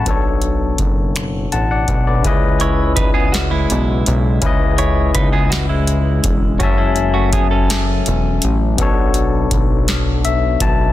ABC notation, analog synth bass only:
X:1
M:6/8
L:1/8
Q:3/8=55
K:C#phr
V:1 name="Analog synth bass" clef=bass
B,,,2 F,,,2 A,,, B,,, | C,,4 B,,, B,,, | C,,2 C,,3 E,,, | F,,,4 E,,, A,,, |
B,,,2 B,,,3 B,,, |]